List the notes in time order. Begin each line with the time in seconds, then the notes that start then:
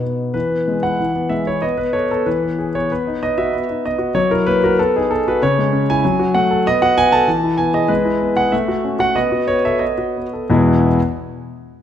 Already playing: B2 B3 D#4
0.03 B3
0.34 E3 B4
0.50 B3
0.68 G#3
0.83 E4 F#5
1.00 E3
1.15 B3
1.29 G#3 E5
1.47 E4 C#5
1.62 B3 D#5
1.77 B3 B4
1.93 A4 C#5
2.11 B3 A4
2.26 E3 B4
2.43 B3
2.59 G#4
2.75 B3 C#5
2.92 B3 B4
3.07 D#4
3.23 B3 D#5
3.38 F#4 E5
3.53 B3
3.70 D#4
3.85 B3 D#5
3.98 F#4
4.15 F#3 C#5
4.31 E4 A#4
4.46 A#3 B4
4.64 F#4 A#4
4.79 B3 A4
4.96 D#4 G#4
5.11 B3 A4
5.28 F#4 B4
5.42 C#3 C#5
5.59 G#3
5.72 C#4
5.90 E4 G#5
6.05 F#3
6.19 F#4
6.34 A3 F#5
6.51 A4
6.67 B3 D#5
6.82 F#4 F#5
6.98 B3 G#5
7.12 A4 A5
7.28 E3
7.44 E4
7.58 B3 G#5
7.74 G#4 D#5
7.88 G#3 B4
8.05 E4
8.21 B3
8.37 G#4 F#5
8.52 A3 E5
8.68 F#4
8.84 C#4
8.99 F#4 F#5
9.16 B3 D#5
9.32 F#4
9.48 B3 C#5
9.65 A4 E5
9.79 B3 D#5
9.98 F#4
10.17 B3
10.33 A4
10.50 E2 B2 G#3 B3 E4 G#4 E5